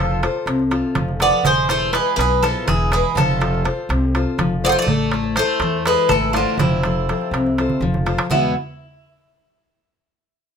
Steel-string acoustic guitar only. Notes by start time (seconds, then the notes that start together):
Already playing: F3 F4
0.00 A4 C5
0.23 F4 A4 C5
0.48 C3
0.71 F4 A4 C5
0.96 F3
1.20 F4 A4 C5
1.45 E3
1.69 E4 G#4 B4
1.93 E4 G#4 B4
2.17 B2
2.42 E4 G#4 B4
2.67 E3
2.91 E4 G#4 B4
3.16 F3
3.41 F4 A4 C5
3.65 F4 A4 C5
3.90 C3
4.15 F4 A4 C5
4.39 F3
4.64 F4 A4 C5
4.88 A3
5.13 E4 A4 C5
5.37 E4 A4 C5
5.62 E3
5.86 E4 A4 C5
6.11 A3
6.36 E4 A4 C5
6.60 F3
6.84 F3 A4 C5
7.09 F3 A4 C5
7.34 C3
7.58 F4 A4 C5
7.82 F3
8.06 F4 A4 C5
8.30 E2 B2 E3 G#3 B3